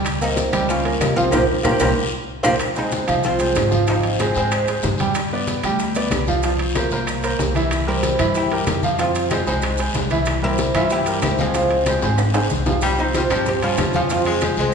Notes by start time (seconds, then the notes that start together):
Already playing: C#2 G3 G4 G5
0.05 high bongo, high conga, high timbale, long guiro, claves, maracas
0.21 A#3 C4 D#4 A#4 F5, high conga, maracas
0.36 high bongo, high conga, high timbale, low timbale, short guiro, maracas
0.52 C#2 G3 G4 G5, high conga, high timbale, short guiro, claves, maracas
0.68 C#4 F4, high bongo, high conga, long guiro, maracas
0.85 A#3 A#4 C#5, high conga, high timbale
1.00 C2 A#3 D#4, high bongo, low bongo, high conga, high timbale, low timbale, short guiro, claves, maracas
1.16 F3 C4 F4 F5, high conga, short guiro, maracas
1.31 C2 A#3 C4 F4 G4 A#4 C5, low bongo, low conga, high timbale, long guiro, claves, maracas
1.63 C2 A#3 C4 F4 G4 A#4 C5, low bongo, low conga, high timbale, long guiro, claves, maracas
1.79 C2 A#3 C4 F4 G4 A#4 C5, low bongo, low conga, high timbale, long guiro, claves, maracas
2.43 C2 A#3 C4 F4 G4 A#4 C5, low bongo, low conga, high timbale, long guiro, claves, maracas
2.60 high bongo, high conga, high timbale, claves, maracas
2.76 G#3 C4 D#4 G#4 C5, high conga, maracas
2.92 high bongo, high conga, high timbale, low timbale, short guiro, maracas
3.07 C2 F3 F4 F5, high conga, high timbale, short guiro, claves, maracas
3.23 C4 F4, high bongo, high conga, long guiro, maracas
3.40 G#3 G#4 C5, high conga, high timbale, maracas
3.55 G#1, high bongo, low bongo, high conga, high timbale, low timbale, short guiro, claves, maracas
3.71 F3 F4 F5, high conga, short guiro, maracas
3.87 F3 C4 D#4 F4 F5, high bongo, high conga, high timbale, long guiro, maracas
4.03 high bongo, high conga, high timbale
4.19 G#3 C4 G#4 C5, high bongo, high conga, high timbale, low timbale, short guiro, claves, maracas
4.34 G#2 G#3 C4 G#4 C5, high bongo, high conga, short guiro, maracas
4.51 high bongo, high conga, high timbale, long guiro, claves, maracas
4.68 G#3 G#4 C5, high bongo, high conga, high timbale, maracas
4.82 G2, high bongo, low bongo, high conga, low timbale, short guiro, maracas
4.98 G3 G4 G5, high conga, high timbale, short guiro, maracas
5.15 high bongo, high conga, high timbale, long guiro, claves, maracas
5.32 B3 B4 D5, high conga
5.47 high bongo, high conga, high timbale, low timbale, short guiro, maracas
5.63 D2 G3 G4 G5, high conga, high timbale, short guiro, claves, maracas
5.79 high bongo, high conga, long guiro, maracas
5.95 B3 B4 D5, high conga, high timbale, maracas
6.10 C2, high bongo, low bongo, high conga, high timbale, low timbale, short guiro, claves, maracas
6.27 F3 F4 F5, high conga, short guiro, maracas
6.43 F3 F4 F5, high bongo, high conga, high timbale, long guiro, maracas
6.59 high bongo, high conga, high timbale
6.75 A#3 A#4 C5, high bongo, high conga, high timbale, low timbale, short guiro, claves, maracas
6.91 C2 A#3 A#4 C5, high bongo, high conga, short guiro, maracas
7.07 high bongo, high conga, high timbale, long guiro, claves, maracas
7.23 A#3 A#4 C5, high bongo, high conga, high timbale, maracas
7.39 C2, high bongo, low bongo, high conga, low timbale, short guiro, maracas
7.55 E3 E4 E5, high conga, high timbale, short guiro, maracas
7.71 high bongo, high conga, high timbale, long guiro, claves, maracas
7.87 G3 C4 E4 G4 A#4, high conga
8.03 high bongo, high conga, high timbale, low timbale, short guiro, maracas
8.19 G2 E3 E4 E5, high conga, high timbale, short guiro, claves, maracas
8.35 E4 G4, high bongo, high conga, long guiro, maracas
8.51 G3 G4 A#4, high conga, high timbale
8.66 F2, high bongo, low bongo, high conga, high timbale, low timbale, short guiro, claves, maracas
8.83 F3 F4 F5, high conga, short guiro, maracas
8.99 F3 C4 F4 F5, high bongo, high conga, high timbale, long guiro, maracas
9.15 high bongo, high conga, high timbale, maracas
9.30 G#3 C4 D#4 G#4 C5, high bongo, high conga, high timbale, low timbale, short guiro, claves, maracas
9.47 C2 G#3 C4 D#4 G#4 C5, high bongo, high conga, short guiro, maracas
9.62 high bongo, high conga, high timbale, long guiro, claves, maracas
9.78 G#3 G#4 C5, high bongo, high conga, high timbale, maracas
9.94 C2, high bongo, low bongo, high conga, low timbale, short guiro, maracas
10.10 E3 E4 E5, high conga, high timbale, short guiro, maracas
10.26 high bongo, high conga, high timbale, long guiro, claves, maracas
10.42 G3 C4 E4 G4 A#4, high conga
10.58 high bongo, high conga, high timbale, low timbale, short guiro, maracas
10.75 G2 E3 C#4 E4 F4 E5, high conga, high timbale, short guiro, claves, maracas
10.90 E4 G4, high bongo, high conga, long guiro, maracas
11.06 G3 G4 A#4, high conga, high timbale, maracas
11.22 C#2 C4 E4, high bongo, low bongo, high conga, high timbale, low timbale, short guiro, claves, maracas
11.38 F3 G#3 C4 F4 F5, high conga, short guiro, maracas
11.54 F3 F4 F5, high bongo, high conga, high timbale, long guiro, maracas
11.71 high bongo, high conga, high timbale
11.86 G#3 G#4 C5, high bongo, high conga, high timbale, low timbale, short guiro, claves, maracas
12.02 G#1 G#3 G#4 C5, high bongo, short guiro, maracas
12.18 low bongo, high conga, high timbale, long guiro, claves, maracas
12.34 G#3 G#4 C5, low bongo, high conga, high timbale, maracas
12.50 C2, high conga, short guiro, maracas
12.66 F3 F4 F5, low bongo, high conga, low timbale, short guiro, maracas
12.81 G3 C4, high bongo, high conga, high timbale, long guiro, claves, maracas
12.98 C4 D#4 C5, high conga, maracas
13.14 G3 C4 F4, high bongo, high conga, high timbale, low timbale, short guiro, maracas
13.30 G2 F3 C4 D#4 G4 C5, high bongo, high conga, low conga, high timbale, short guiro, claves, maracas
13.46 C4 G4, high bongo, high conga, low conga, long guiro, maracas
13.62 F3 G3 C#4 F4 C5, high bongo, high conga, high timbale, maracas
13.77 F2, high bongo, low bongo, high conga, high timbale, low timbale, short guiro, claves, maracas
13.93 F3 C#4 F4 F5, high bongo, high conga, short guiro, maracas
14.10 F3 C4 F4 F5, high bongo, high conga, high timbale, long guiro, maracas
14.25 G#3, high conga, high timbale, maracas
14.41 G#3 G#4 C5, high bongo, high conga, high timbale, low timbale, short guiro, claves, maracas
14.56 C2 G#3, high bongo, high conga, short guiro, maracas
14.60 C4